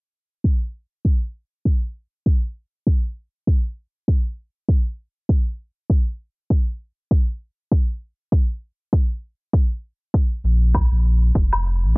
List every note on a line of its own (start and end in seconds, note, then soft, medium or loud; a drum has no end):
0.44 kick loud
1.05 kick medium
1.65 kick medium
2.26 kick loud
2.87 kick loud
3.47 kick loud
4.08 kick medium
4.69 kick loud
5.29 kick loud
5.90 kick loud
6.50 kick medium
7.11 kick loud
7.72 kick loud
8.32 kick loud
8.93 kick medium
9.53 kick loud
10.14 kick loud
10.14 cabasa soft
10.44 10.86 A#1 loud
10.44 cabasa medium
10.62 cabasa soft
10.74 kick loud
10.74 cabasa soft
10.74 low woodblock medium
10.92 11.31 A#1 loud
11.05 cabasa medium
11.22 cabasa soft
11.35 11.84 F1 medium
11.35 kick medium
11.35 cabasa soft
11.53 cabasa soft
11.53 low woodblock medium
11.65 cabasa medium
11.83 11.98 A#1 medium
11.83 cabasa soft